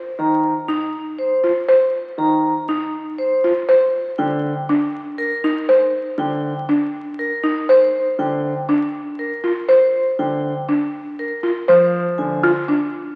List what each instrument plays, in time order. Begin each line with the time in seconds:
0.19 grand piano D#3, vibraphone A#5
0.68 marimba D#4
1.19 vibraphone C5
1.44 marimba F4
1.68 marimba C5
2.18 grand piano D#3, vibraphone A#5
2.69 marimba D#4
3.18 vibraphone C5
3.44 marimba F4
3.69 marimba C5
4.18 grand piano D3, vibraphone G5
4.69 marimba D4
5.18 vibraphone A#4
5.44 marimba D#4
5.69 marimba C5
6.18 grand piano D3, vibraphone G5
6.69 marimba D4
7.19 vibraphone A#4
7.44 marimba D#4
7.69 marimba C5, vibraphone C5
8.19 grand piano D3, vibraphone G5
8.69 marimba D4
9.19 vibraphone A#4
9.44 marimba F4
9.69 marimba C5, vibraphone C5
10.19 grand piano D3, vibraphone G5
10.69 marimba D4
11.19 vibraphone A#4
11.43 marimba F4
11.68 grand piano F3, marimba C5, vibraphone C5
12.18 grand piano D3, vibraphone G#5
12.43 marimba F4
12.68 marimba D4